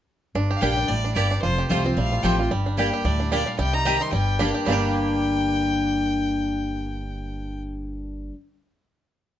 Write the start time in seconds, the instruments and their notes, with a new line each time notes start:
0.35 upright bass G1, steel-string acoustic guitar G2, five-string banjo D4
0.51 five-string banjo G4
0.56 fiddle F5
0.61 upright bass A#1, steel-string acoustic guitar G3 A#3 D4 G4, mandolin A#3 G4 D5 G5, five-string banjo D4, fiddle G5
0.77 five-string banjo D4
0.88 upright bass A1, steel-string acoustic guitar A2, five-string banjo G3, fiddle D5
1.05 five-string banjo D4
1.14 upright bass G1, steel-string acoustic guitar G2, mandolin A#3 G4 D5 G5, five-string banjo G4, fiddle D5
1.31 five-string banjo D4
1.42 upright bass F1, steel-string acoustic guitar F2, five-string banjo F4, fiddle C5
1.58 five-string banjo G4
1.68 upright bass C2, steel-string acoustic guitar F3 G3 C4 F4, mandolin A3 F4 C5 G5, five-string banjo F4, fiddle C5
1.85 five-string banjo C4, steel-string acoustic guitar C4 F4
1.95 upright bass A#1, steel-string acoustic guitar A2, five-string banjo G3, fiddle F5
2.12 five-string banjo F4
2.23 upright bass A1, steel-string acoustic guitar F3 G3 C4 F4, mandolin A3 F4 C5 G5, five-string banjo G4, fiddle G5
2.38 steel-string acoustic guitar C4 F4, five-string banjo F4
2.51 upright bass G1, steel-string acoustic guitar G2, five-string banjo G3
2.66 five-string banjo D4
2.77 steel-string acoustic guitar G3 A#3 D4 G4, mandolin A#3 G4 D5 G5, five-string banjo D4, fiddle G5
2.93 five-string banjo G4
3.05 upright bass D2, steel-string acoustic guitar A2, five-string banjo G3, fiddle D5
3.20 five-string banjo D4
3.32 steel-string acoustic guitar A#2, mandolin A#3 G4 D5 G5, five-string banjo D4, fiddle D5
3.46 five-string banjo G3, fiddle F5
3.59 upright bass C2, steel-string acoustic guitar C3, five-string banjo G3, fiddle G5
3.73 five-string banjo D#4, fiddle A#5
3.85 steel-string acoustic guitar D#3 G3 C4 G4, five-string banjo G3, mandolin C4 G4 D#5 G5
4.01 five-string banjo D#4, fiddle C6
4.12 upright bass G1, steel-string acoustic guitar G2, five-string banjo G3, fiddle G5
4.39 steel-string acoustic guitar G3 A#3 D4 G4, mandolin A#3 G4 D5 G5, five-string banjo D4
4.54 five-string banjo G4
4.65 upright bass G1, steel-string acoustic guitar G2 D3 G3 A#3 D4 G4, five-string banjo G3 A#3, mandolin A#3 G4 D5 G5, fiddle G5
4.70 five-string banjo D4 G4